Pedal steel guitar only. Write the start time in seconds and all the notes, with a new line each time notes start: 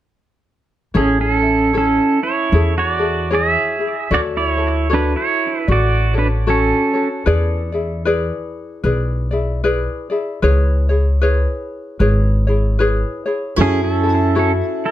0.97 C#4 G#4
1.21 C#4 A4
1.77 C#4 A4
2.23 E4 C#5
2.78 F#4 D5
3.33 G#4 E5
4.14 F#4 D5
4.37 E4 C#5
4.93 D4 B4
5.16 E4 C#5
5.60 B4
5.72 F#4 D5
6.18 D4 B4
6.49 C#4 A4
13.61 C#4 G#4
13.83 C#4 A4
14.38 C#4 A4
14.85 E4 C#5